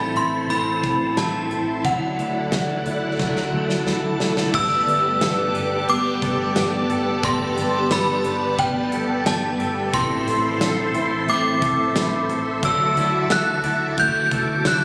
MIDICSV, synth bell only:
0, 0, Header, 1, 2, 480
1, 0, Start_track
1, 0, Key_signature, 1, "major"
1, 0, Tempo, 674157
1, 1314, Time_signature, 4, 2, 24, 8
1, 10569, End_track
2, 0, Start_track
2, 0, Title_t, "Synth bell"
2, 0, Program_c, 0, 98
2, 0, Note_on_c, 0, 83, 88
2, 119, Note_on_c, 0, 84, 83
2, 126, Note_off_c, 0, 83, 0
2, 340, Note_off_c, 0, 84, 0
2, 356, Note_on_c, 0, 83, 105
2, 807, Note_off_c, 0, 83, 0
2, 836, Note_on_c, 0, 81, 76
2, 1318, Note_on_c, 0, 78, 75
2, 1329, Note_off_c, 0, 81, 0
2, 2728, Note_off_c, 0, 78, 0
2, 3239, Note_on_c, 0, 88, 115
2, 4197, Note_on_c, 0, 86, 103
2, 4225, Note_off_c, 0, 88, 0
2, 4887, Note_off_c, 0, 86, 0
2, 5160, Note_on_c, 0, 84, 91
2, 5641, Note_on_c, 0, 83, 95
2, 5651, Note_off_c, 0, 84, 0
2, 6117, Note_on_c, 0, 79, 90
2, 6132, Note_off_c, 0, 83, 0
2, 6598, Note_on_c, 0, 81, 90
2, 6610, Note_off_c, 0, 79, 0
2, 6931, Note_off_c, 0, 81, 0
2, 7078, Note_on_c, 0, 84, 101
2, 8008, Note_off_c, 0, 84, 0
2, 8042, Note_on_c, 0, 86, 103
2, 8730, Note_off_c, 0, 86, 0
2, 9006, Note_on_c, 0, 88, 90
2, 9484, Note_on_c, 0, 90, 98
2, 9494, Note_off_c, 0, 88, 0
2, 9965, Note_on_c, 0, 91, 112
2, 9973, Note_off_c, 0, 90, 0
2, 10448, Note_on_c, 0, 90, 103
2, 10454, Note_off_c, 0, 91, 0
2, 10569, Note_off_c, 0, 90, 0
2, 10569, End_track
0, 0, End_of_file